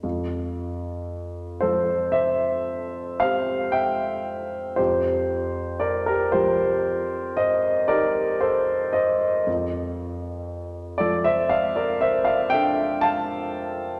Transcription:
<<
  \new Staff \with { instrumentName = "Grand piano" } { \time 9/8 \key f \major \tempo 4. = 38 r4. <a' c''>8 <c'' e''>4 <c'' f''>8 <e'' g''>4 | <g' c''>4 <bes' d''>16 <g' bes'>16 <g' c''>4 <c'' ees''>8 <bes' d''>8 <a' c''>8 <c'' ees''>8 | r4. <a' d''>16 <c'' e''>16 <d'' f''>16 <bes' d''>16 <c'' e''>16 <d'' f''>16 <e'' g''>8 <f'' a''>4 | }
  \new Staff \with { instrumentName = "Grand piano" } { \clef bass \time 9/8 \key f \major f,4. f4. <c' g'>4. | f,4. f4. <ees' g'>4. | f,4. f4. <d' a'>4. | }
>>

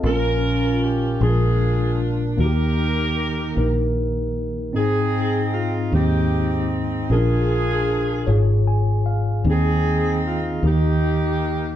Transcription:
<<
  \new Staff \with { instrumentName = "Saxophone section" } { \time 6/8 \key aes \major \tempo 4. = 51 << { bes'4 g'8 aes'4 r8 | bes'2 r4 | aes'4 f'8 g'4 r8 | aes'2 r4 |
aes'4 f'8 g'4. | } \\ { <des' f'>4. <d' f'>4. | <ees' g'>2 r4 | <c' ees'>4. <c' ees'>4. | <d' f'>2 r4 |
<c' ees'>4. <bes ees'>4. | } >> }
  \new Staff \with { instrumentName = "Tine electric piano" } { \time 6/8 \key aes \major << { r2. | r2. | r2. | r2 aes''8 f''8 |
r2. | } \\ { <c' des' f' bes'>4 r8 <aes bes d' f' aes' bes'>4 r8 | <bes ees' ges' g'>4 r8 <bes ees' bes'>4 r8 | <c' ees' aes'>4 r8 <aes c' ees'>4 r8 | <des' d' f' bes'>4 r8 <f' aes' des''>4 r8 |
<c' ees' g' aes'>4 r8 <bes ees' g'>4 r8 | } >> }
  \new Staff \with { instrumentName = "Tine electric piano" } { \clef bass \time 6/8 \key aes \major bes,4. bes,4. | ees4. r4. | aes,4. r4. | bes,4. aes,4. |
ees4. ees4. | }
  \new Staff \with { instrumentName = "Fingered electric bass" } { \clef bass \time 6/8 \key aes \major bes,,4. bes,,4. | ees,4. bes,,4. | aes,,4. ees,4. | bes,,4. aes,,4. |
ees,4. ees,4. | }
>>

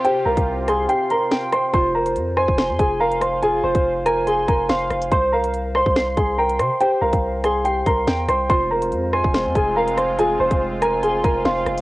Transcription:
<<
  \new Staff \with { instrumentName = "Synth keys" } { \time 4/4 \key f \minor \tempo 4 = 142 <c'' g'' c''' c''''>8 f''4 c'''8 c''''8 c'''8 g''4 | f'8 c''4 aes''8 c'''8 aes''8 f''4 | f'8 c''4 aes''8 c'''8 aes''8 f''4 | c''8 f''4 c'''8 c''''8 c'''8 g''4 |
c''8 f''4 c'''8 c''''8 c'''8 g''4 | f'8 c''4 aes''8 c'''8 aes''8 f''4 | f'8 c''4 aes''8 c'''8 aes''8 f''4 | }
  \new Staff \with { instrumentName = "Grand piano" } { \time 4/4 \key f \minor <g' g''>8 <bes' bes''>4 <aes' aes''>8 <g' g''>8 <bes' bes''>4 <c'' c'''>8 | <c'' c'''>8 <bes' bes''>4 <c'' c'''>4 <aes' aes''>8 <bes' bes''>8 <c'' c'''>8 | <aes' aes''>8 <c'' c'''>4 <bes' bes''>8 <aes' aes''>8 <bes' bes''>8 <c'' c'''>4 | <c'' c'''>8 <bes' bes''>4 <c'' c'''>4 <aes' aes''>8 <bes' bes''>8 <c'' c'''>8 |
<g' g''>8 <bes' bes''>4 <aes' aes''>8 <g' g''>8 <bes' bes''>4 <c'' c'''>8 | <c'' c'''>8 <bes' bes''>4 <c'' c'''>4 <aes' aes''>8 <bes' bes''>8 <c'' c'''>8 | <aes' aes''>8 <c'' c'''>4 <bes' bes''>8 <aes' aes''>8 <bes' bes''>8 <c'' c'''>4 | }
  \new Staff \with { instrumentName = "Analog synth pad" } { \time 4/4 \key f \minor <c c' f' g'>1 | r1 | r1 | r1 |
r1 | <aes c' f'>1~ | <aes c' f'>1 | }
  \new Staff \with { instrumentName = "808-style bass" } { \clef bass \time 4/4 \key f \minor r8 c,16 c,4~ c,16 r2 | f,,4 f,8. f,,8 f,16 f,,4.~ | f,,8 f,,16 f,,4.~ f,,16 f,,8 f,,8 f,,8 | c,4.~ c,16 c,8. c,4 c16 r16 |
r8 c,16 c,4.~ c,16 c,8 e,8 c,8 | f,,4 f,8. f,,8 f,16 f,,4.~ | f,,8 f,,16 f,,4.~ f,,16 f,,8 f,,8 f,,8 | }
  \new DrumStaff \with { instrumentName = "Drums" } \drummode { \time 4/4 hh8. <hh bd>16 r8 <hh ss>8 hh8 hh8 sn8 <hh ss>8 | <hh bd>8. hh16 hh8 ss16 bd16 sn8 <hh bd>8 r16 hh16 <hh ss>8 | hh8. <hh bd>16 r8 <hh ss>8 hh8 <hh bd>8 sn8 <hh ss>16 hh16 | <hh bd>8. hh16 hh8 ss16 bd16 sn8 <hh bd>8 r16 hh16 <hh ss>8 |
hh8. <hh bd>16 r8 <hh ss>8 hh8 <hh bd>8 sn8 <hh ss>8 | <hh bd>8. hh16 hh8 ss16 bd16 sn8 <hh bd>8 r16 hh16 <hh ss>8 | hh8. <hh bd>16 r8 <hh ss>8 hh8 <hh bd>8 sn8 <hh ss>16 hh16 | }
>>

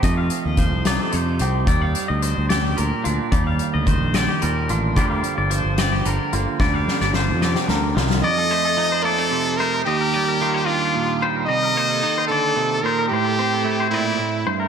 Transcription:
<<
  \new Staff \with { instrumentName = "Clean electric guitar" } { \time 6/8 \key ees \lydian \tempo 4. = 73 ees''16 f''8 ees''16 c''8 d''16 a'16 c''8 g'8 | d''16 f''8 ees''16 c''8 d''16 g'16 bes'8 f'8 | d''16 f''8 ees''16 c''8 d''16 g'16 bes'8 f'8 | d''16 f''8 d''16 c''8 d''16 g'16 bes'8 f'8 |
d''16 f''8 d''16 c''8 d''16 g'16 bes'8 f'8 | d''16 a'16 c''16 a'8 c''16 d''8 r8 c''16 bes'16 | ees''16 bes'16 d''16 bes'8 c''16 d''8 r8 c''16 bes'16 | ees''16 bes'16 c''16 a'8 c''16 d''8 r8 c''16 bes'16 |
c''16 a'16 c''16 a'8 c''16 d''8 r8 c''16 bes'16 | }
  \new Staff \with { instrumentName = "Trumpet" } { \time 6/8 \key ees \lydian r2. | r2. | r2. | r2. |
r2. | ees''4. a'4 bes'8 | g'4. f'4 r8 | ees''4. a'4 bes'8 |
g'4. e'4 r8 | }
  \new Staff \with { instrumentName = "Clean electric guitar" } { \clef bass \time 6/8 \key ees \lydian << { <a ees'>4. ees'4 c'8 | g4. g'4 d'8 | g4. g'4 d'8 | <f g bes g'>4. g'4 bes8 |
g2. | r8 a8 ees'8 bes16 c'8. a8 | r8 g8 f'8 d'4 g8~ | g8 bes8 ees'2 |
r8 c'8 e'2 | } \\ { f,4 f4 c4 | r2 bes,4 | ees,4 ees4 bes,4 | d4 f4 d4 |
d4 f8 c8 d8 ees8 | f,4 f4 c4 | ees,4 ees4 bes,4 | c4 ees8 d8 c8 bes,8 |
a,4 a8 bes,8 a,8 g,8 | } >> }
  \new Staff \with { instrumentName = "Fingered electric bass" } { \clef bass \time 6/8 \key ees \lydian f,8 r16 ees,8 c,8 r16 f,8 c,8 | ees,8 r16 d,8 d,8. d,16 r16 d,16 r16 | ees,8 r16 d,8 bes,,8 r16 ees,8 a,,8 | d,8 r16 g,,8 g,,8. g,,16 r16 g,,16 r16 |
d,8 r16 g,,8 f,8 r16 d,8 c,8 | r2. | r2. | r2. |
r2. | }
  \new DrumStaff \with { instrumentName = "Drums" } \drummode { \time 6/8 <hh bd>8 hh8 <hh bd>8 <hh sn>8 hh8 hh8 | <hh bd>8 hh8 hh8 <hh sn>8 hh8 hh8 | <hh bd>8 hh8 <hh bd>8 <hh sn>8 hh8 hh8 | <hh bd>8 hh8 hh8 <hh sn>8 hh8 hh8 |
<bd sn>8 sn16 sn16 sn8 sn16 sn16 sn8 sn16 sn16 | r4. r4. | r4. r4. | r4. r4. |
r4. r4. | }
>>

